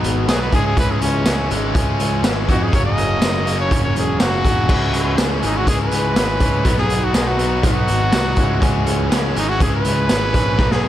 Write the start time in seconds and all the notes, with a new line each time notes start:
Already playing: B2 F#3 B3 D#4
0.03 G#1, closed hi-hat
0.27 B1 B2 F#3 B3 D#4 G#4, snare, closed hi-hat, tambourine
0.42 B4
0.52 C#2 C#3 E3 G#3 C#4 G#4, kick, closed hi-hat
0.67 G#4
0.76 C#2 C#3 E3 G#3 C#4 B4, kick, closed hi-hat
0.91 G#4
1.01 C#2 C#4, closed hi-hat
1.25 C#2 C#3 E3 G#3 C#4, snare, closed hi-hat, tambourine
1.50 G#1 C#3 E3 G#3 C#4, closed hi-hat
1.75 C#2 C#3 E3 G#3 C#4, kick, closed hi-hat
2.00 C#2, closed hi-hat
2.23 G#1 C#3 E3 G#3 C#4, snare, closed hi-hat, tambourine
2.48 F2 C#3 E3 G#3 C#4 F#4, kick, closed hi-hat
2.64 G#4
2.72 F#1 F#2 C#3 F#3 A#3 C#4 C#5, kick, closed hi-hat
2.86 D#5
2.97 F#1, closed hi-hat
3.21 F#1 F#2 C#3 F#3 A#3 C#4, snare, closed hi-hat, tambourine
3.45 F#2 C#3 F#3 A#3 C#4, closed hi-hat
3.60 C#5
3.70 F#1 F#2 C#3 F#3 A#3 C#4, kick, closed hi-hat
3.84 C#5
3.96 E1 G#4, closed hi-hat
4.19 F#1 F#2 C#3 F#3 A#3 C#4 F#4, snare, closed hi-hat, tambourine
4.43 E1 F#2 C#3 F#3 A#3 C#4, kick, closed hi-hat
4.68 C#2 C#3 E3 G#3 C#4, kick, crash
4.93 C#2, closed hi-hat
5.17 C#2 C#3 E3 G#3 C#4, snare, closed hi-hat, tambourine
5.41 G#1 C#3 E3 G#3 C#4 D#4, closed hi-hat
5.57 F#4
5.66 C#2 C#3 E3 G#3 C#4 G#4, kick, closed hi-hat
5.81 B4
5.91 C#2, closed hi-hat
6.15 G#1 C#3 E3 G#3 C#4, snare, closed hi-hat, tambourine
6.40 C#2 C#3 E3 G#3 C#4, kick, closed hi-hat
6.64 B1 B2 F#3 B3 D#4, kick, closed hi-hat
6.77 G#4, snare
6.90 B1, closed hi-hat
7.04 F#4
7.13 B1 B2 F#3 B3 D#4 G#4, snare, closed hi-hat, tambourine
7.28 F#4
7.38 B2 F#3 B3 D#4, closed hi-hat
7.63 B1 B2 F#3 B3 D#4 F#4, kick, closed hi-hat
7.88 G#1, closed hi-hat
8.12 C2 B2 F#3 B3 D#4, snare, closed hi-hat, tambourine
8.36 C#2 C#3 E3 G#3 C#4, kick, closed hi-hat
8.62 C#2 C#3 E3 G#3 C#4, kick, closed hi-hat
8.87 C#2, closed hi-hat
9.11 C#2 C#3 E3 G#3 C#4, snare, closed hi-hat, tambourine
9.36 G#1 C#3 E3 G#3 C#4 D#4, closed hi-hat
9.49 F#4
9.60 C#2 C#3 E3 G#3 C#4 G#4, kick, closed hi-hat
9.75 B4
9.85 C#2, closed hi-hat
10.09 G#1 C#3 E3 G#3 C#4, snare, closed hi-hat, tambourine
10.34 A#1 C#3 E3 G#3 C#4, kick, closed hi-hat
10.58 B1 B2 F#3 B3 D#4, kick, snare
10.71 G#4, snare
10.84 B1